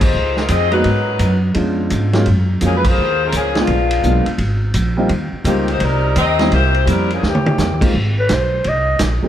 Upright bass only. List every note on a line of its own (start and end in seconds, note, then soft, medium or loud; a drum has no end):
0.00 0.13 D#2 medium
0.14 0.48 C#2 medium
0.49 0.83 F2 loud
0.85 1.19 G#2 medium
1.19 1.54 F#2 medium
1.55 1.90 F2 medium
1.91 2.25 G#2 medium
2.27 2.61 F#2 medium
2.62 2.96 F2 medium
2.98 3.32 D#2 medium
3.33 3.67 C#2 medium
3.68 4.02 A#1 medium
4.04 4.25 B1 medium
4.26 muted upright bass stroke soft
4.38 4.73 G#1 medium
4.74 5.09 A#1 loud
5.09 5.31 D#2 medium
5.32 muted upright bass stroke soft
5.44 5.79 C#2 loud
5.81 6.15 C2 medium
6.16 6.51 D#2 loud
6.51 6.86 C2 medium
6.87 7.21 F2 medium
7.23 7.57 D#2 medium
7.58 7.71 E2 loud
7.71 7.82 D#2 medium
7.82 7.93 C#2 medium
7.94 8.28 G#1 medium
8.30 8.64 B1 medium
8.65 8.99 C2 medium
9.00 9.22 A#1 medium
9.24 muted upright bass stroke soft